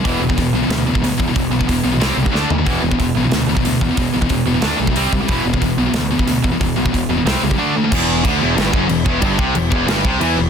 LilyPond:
<<
  \new Staff \with { instrumentName = "Distorted electric guitar" } { \clef bass \time 4/4 \key e \minor \tempo 4 = 183 <e, b, e>8 <e, b,>16 <e, b,>16 <e, b,>8 <e, b,>16 <e, b,>16 <e, b,>8 <e, b,>16 <e, b,>16 <e, b,>8 <e, b,>16 <e, b,>16 | <e, b,>8 <e, b,>16 <e, b,>16 <e, b,>8 <e, b,>16 <e, b,>16 <c g c'>8 <c g>16 <c g>16 <d a d'>8 <d a>16 <d a>16 | <e, b, e>8 <e, b,>16 <e, b,>16 <e, b,>8 <e, b,>16 <e, b,>16 <e, b,>8 <e, b,>16 <e, b,>16 <e, b,>8 <e, b,>16 <e, b,>16 | <e, b,>8 <e, b,>16 <e, b,>16 <e, b,>8 <e, b,>16 <e, b,>16 <d a d'>8 <d a>16 <d a>16 <c g c'>8 <c g>16 <c g>16 |
<e, b, e>8 <e, b,>16 <e, b,>16 <e, b,>8 <e, b,>16 <e, b,>16 <e, b,>8 <e, b,>16 <e, b,>16 <e, b,>8 <e, b,>16 <e, b,>16 | <e, b,>8 <e, b,>16 <e, b,>16 <e, b,>8 <e, b,>16 <e, b,>16 <c g c'>8 <c g>16 <c g>16 <d a d'>8 <d a>16 <d a>16 | e,4 d8 e,8 g,8 fis,8 e,8 e,8 | g,8 c8 e,8 e,8 g,8 c8 e8 e,8 | }
  \new Staff \with { instrumentName = "Distorted electric guitar" } { \clef bass \time 4/4 \key e \minor <e, b, e>8 <e, b,>16 <e, b,>16 <e, b,>8 <e, b,>16 <e, b,>16 <e, b,>8 <e, b,>16 <e, b,>16 <e, b,>8 <e, b,>16 <e, b,>16 | <e, b,>8 <e, b,>16 <e, b,>16 <e, b,>8 <e, b,>16 <e, b,>16 <c g c'>8 <c g>16 <c g>16 <d a d'>8 <d a>16 <d a>16 | <e, b, e>8 <e, b,>16 <e, b,>16 <e, b,>8 <e, b,>16 <e, b,>16 <e, b,>8 <e, b,>16 <e, b,>16 <e, b,>8 <e, b,>16 <e, b,>16 | <e, b,>8 <e, b,>16 <e, b,>16 <e, b,>8 <e, b,>16 <e, b,>16 <d a d'>8 <d a>16 <d a>16 <c g c'>8 <c g>16 <c g>16 |
<e, b, e>8 <e, b,>16 <e, b,>16 <e, b,>8 <e, b,>16 <e, b,>16 <e, b,>8 <e, b,>16 <e, b,>16 <e, b,>8 <e, b,>16 <e, b,>16 | <e, b,>8 <e, b,>16 <e, b,>16 <e, b,>8 <e, b,>16 <e, b,>16 <c g c'>8 <c g>16 <c g>16 <d a d'>8 <d a>16 <d a>16 | e,4 d8 e,8 g,8 fis,8 e,8 e,8 | g,8 c8 e,8 e,8 g,8 c8 e8 e,8 | }
  \new Staff \with { instrumentName = "Picked electric bass" } { \clef bass \time 4/4 \key e \minor e,,8 e,,8 e,,8 b,,8 d,4 d,8 e,8 | e,,8 b,,8 e,,8 b,,8 c,8 c,8 d,8 dis,8 | e,,8 e,,8 e,,8 b,,8 d,4 d,8 e,8 | e,,8 b,,8 e,,8 e,,8 d,8 b,,8 c,8 c,8 |
e,,8 e,,8 e,,8 b,,8 d,4 d,8 e,8 | e,,8 b,,8 e,,8 e,,8 c,8 cis,8 r4 | e,,4 d,8 e,,8 g,,8 fis,,8 e,,8 e,,8 | g,,8 c,8 e,,8 e,,8 g,,8 c,8 e,8 e,,8 | }
  \new DrumStaff \with { instrumentName = "Drums" } \drummode { \time 4/4 <hho bd>8. bd16 <hho bd>4 <hho sn>8. bd16 hho8 bd8 | <hho bd>8. bd16 <hho bd>4 <hho sn>8. bd16 sn8 tomfh8 | <hho bd>8. bd16 <hho bd>4 <hho sn>8. bd16 hho8 bd8 | <hho bd>8. bd16 <hho bd>4 <hho sn>8. bd16 hho8 bd8 |
<hho bd>8. bd16 <hho bd>4 <hho sn>8. bd16 hho8 bd8 | <hho bd>8. bd16 <hho bd>4 <hho sn>8. bd16 r4 | <cymc bd>4 <cymc bd>4 <cymc sn>8 bd8 cymc8 bd8 | <cymc bd>8 bd8 cymc8 bd8 <cymc sn>8 bd8 cymc4 | }
>>